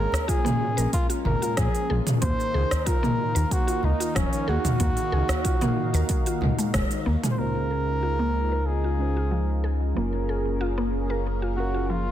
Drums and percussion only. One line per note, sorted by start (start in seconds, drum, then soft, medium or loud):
0.12 cross-stick medium
0.12 open hi-hat soft
0.12 udu medium
0.12 shaker medium
0.29 kick loud
0.29 open hi-hat medium
0.29 shaker soft
0.46 mid tom medium
0.46 open hi-hat soft
0.46 shaker soft
0.78 open hi-hat soft
0.78 shaker medium
0.93 kick loud
0.93 open hi-hat medium
0.93 shaker soft
1.10 open hi-hat soft
1.10 shaker soft
1.25 mid tom medium
1.25 udu medium
1.42 open hi-hat soft
1.42 shaker medium
1.57 kick medium
1.57 cross-stick medium
1.57 open hi-hat medium
1.57 shaker soft
1.75 open hi-hat soft
1.75 shaker soft
2.07 mid tom medium
2.07 open hi-hat soft
2.07 shaker medium
2.22 kick loud
2.22 open hi-hat medium
2.22 shaker medium
2.40 shaker soft
2.71 cross-stick medium
2.71 open hi-hat soft
2.71 udu medium
2.71 shaker medium
2.87 kick loud
2.87 open hi-hat medium
2.87 shaker soft
3.03 mid tom medium
3.03 shaker soft
3.36 open hi-hat soft
3.36 shaker medium
3.51 kick loud
3.51 open hi-hat medium
3.51 shaker soft
3.68 open hi-hat soft
3.68 shaker soft
3.83 udu medium
4.01 open hi-hat soft
4.01 shaker medium
4.16 kick loud
4.16 cross-stick medium
4.16 open hi-hat medium
4.16 shaker soft
4.33 open hi-hat soft
4.33 shaker soft
4.64 mid tom medium
4.64 open hi-hat soft
4.64 udu medium
4.64 shaker medium
4.80 kick loud
4.80 open hi-hat medium
4.80 shaker medium
4.97 open hi-hat soft
4.97 shaker soft
5.28 cross-stick medium
5.28 open hi-hat soft
5.28 udu medium
5.28 shaker medium
5.45 kick loud
5.45 open hi-hat medium
5.45 shaker medium
5.61 mid tom medium
5.61 open hi-hat soft
5.61 shaker soft
5.94 open hi-hat soft
5.94 shaker medium
6.09 kick loud
6.09 open hi-hat medium
6.09 shaker medium
6.26 open hi-hat soft
6.26 shaker soft
6.41 mid tom medium
6.41 udu medium
6.59 open hi-hat soft
6.59 shaker medium
6.74 kick medium
6.74 cross-stick medium
6.74 open hi-hat medium
6.74 shaker medium
6.91 open hi-hat soft
6.91 shaker soft
7.24 mid tom medium
7.24 open hi-hat soft
7.24 shaker medium